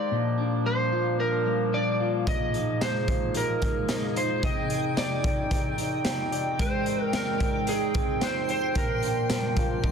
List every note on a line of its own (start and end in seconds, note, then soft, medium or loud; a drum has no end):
0.00 0.11 G#3 medium
0.00 0.16 D#4 medium
0.00 0.92 G4 medium
0.00 2.24 G4 medium
0.00 0.16 C5 medium
0.00 0.66 D5 medium
0.11 2.26 A#2 medium
0.11 4.40 F3 medium
0.11 4.40 A#3 medium
0.11 2.25 D4 medium
0.38 1.18 D4 medium
0.65 1.44 G3 medium
0.65 1.20 C5 medium
0.92 2.00 F4 medium
1.19 1.72 D4 medium
1.19 1.75 A#4 medium
1.46 2.32 G3 medium
1.73 2.33 D4 medium
1.73 2.11 D5 medium
2.00 2.57 F4 medium
2.27 4.42 D#4 medium
2.27 4.42 G#4 medium
2.27 2.83 D#5 loud
2.27 kick loud
2.27 closed hi-hat medium
2.54 3.35 D#4 medium
2.54 closed hi-hat soft
2.81 3.61 G#3 medium
2.81 4.66 D#4 medium
2.81 3.37 C5 medium
2.81 snare loud
2.81 closed hi-hat medium
2.81 tambourine medium
2.99 4.82 G#4 medium
3.08 4.15 F4 medium
3.08 kick medium
3.08 closed hi-hat soft
3.35 3.89 D#4 medium
3.35 4.13 A#4 medium
3.35 closed hi-hat medium
3.62 4.49 G#3 medium
3.62 kick medium
3.62 closed hi-hat soft
3.89 4.97 D#4 medium
3.89 snare loud
3.89 closed hi-hat medium
3.89 tambourine medium
4.16 4.49 F4 medium
4.16 4.42 C5 medium
4.16 closed hi-hat medium
4.43 6.59 C3 medium
4.43 8.72 D#3 medium
4.43 8.72 C4 medium
4.43 6.42 D#4 medium
4.43 4.98 D#5 loud
4.43 9.91 G5 medium
4.43 kick loud
4.43 closed hi-hat medium
4.70 5.51 G4 soft
4.70 closed hi-hat soft
4.97 5.77 D#4 medium
4.97 6.29 D5 medium
4.97 snare loud
4.97 closed hi-hat medium
4.97 tambourine medium
5.24 6.31 D5 medium
5.24 kick medium
5.24 closed hi-hat medium
5.50 6.04 G4 medium
5.50 6.82 A#4 medium
5.50 kick medium
5.50 closed hi-hat medium
5.68 6.98 D5 soft
5.78 6.86 D#4 medium
5.78 closed hi-hat medium
6.05 8.49 G4 medium
6.05 snare loud
6.05 closed hi-hat medium
6.05 tambourine medium
6.32 6.65 D5 medium
6.32 closed hi-hat medium
6.59 8.75 G#3 medium
6.59 8.73 G#3 medium
6.59 7.05 C5 loud
6.59 kick loud
6.59 closed hi-hat medium
6.86 7.66 D#4 medium
6.86 closed hi-hat medium
7.05 7.15 A#4 loud
7.13 7.93 C4 medium
7.13 7.70 A#4 loud
7.13 snare loud
7.13 closed hi-hat medium
7.13 tambourine medium
7.40 8.99 C5 medium
7.40 kick loud
7.40 closed hi-hat soft
7.67 8.20 D#4 medium
7.67 8.24 G#4 loud
7.67 closed hi-hat medium
7.94 8.81 C4 medium
7.94 kick loud
7.94 closed hi-hat medium
8.21 8.81 D#4 medium
8.21 8.49 C5 medium
8.21 snare loud
8.21 closed hi-hat medium
8.21 tambourine medium
8.49 9.56 G4 medium
8.49 8.77 C5 medium
8.49 closed hi-hat medium
8.75 9.91 A#2 medium
8.75 9.91 F3 medium
8.75 9.91 A#3 medium
8.75 9.91 D4 medium
8.75 9.91 A#4 medium
8.75 kick medium
8.75 closed hi-hat medium
9.03 9.83 D4 medium
9.03 closed hi-hat soft
9.30 9.91 G3 medium
9.30 snare loud
9.30 closed hi-hat medium
9.30 tambourine medium
9.56 9.91 F4 medium
9.56 9.91 D5 medium
9.56 kick medium
9.56 closed hi-hat medium
9.75 9.91 F5 medium
9.84 9.91 D4 medium
9.84 kick medium
9.84 high tom medium